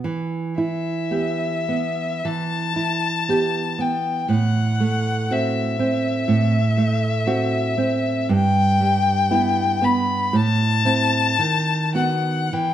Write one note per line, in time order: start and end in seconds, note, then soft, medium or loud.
0.04 2.22 E3 soft
0.58 1.46 E4 soft
0.58 2.27 E5 medium
1.11 1.65 B3 soft
1.11 1.65 G4 soft
1.69 2.58 B3 soft
2.25 4.27 E3 soft
2.25 3.82 A5 medium
2.76 3.59 E4 soft
3.29 3.76 B3 soft
3.29 3.76 G4 soft
3.79 4.31 B3 soft
3.79 4.30 G5 soft
4.29 6.24 A2 soft
4.29 5.34 F#5 medium
4.80 5.61 A3 soft
5.31 5.77 C4 soft
5.31 5.76 F#4 soft
5.31 8.31 E5 medium
5.79 6.58 C4 soft
6.28 8.26 A2 soft
6.77 7.59 A3 soft
7.27 7.75 C4 soft
7.27 7.75 F#4 soft
7.78 8.30 C4 soft
8.29 10.30 G2 medium
8.29 9.86 G5 loud
8.80 9.62 G3 soft
9.31 9.79 B3 soft
9.31 9.79 E4 soft
9.82 10.34 B3 soft
9.82 10.37 B5 medium
10.33 11.36 A2 medium
10.33 11.95 A5 loud
10.85 11.35 C4 soft
10.85 11.35 E4 soft
11.39 12.49 D#3 medium
11.95 12.49 B3 soft
11.95 12.49 F#4 soft
11.95 12.54 F#5 medium
12.53 12.74 E3 medium
12.53 12.74 G5 medium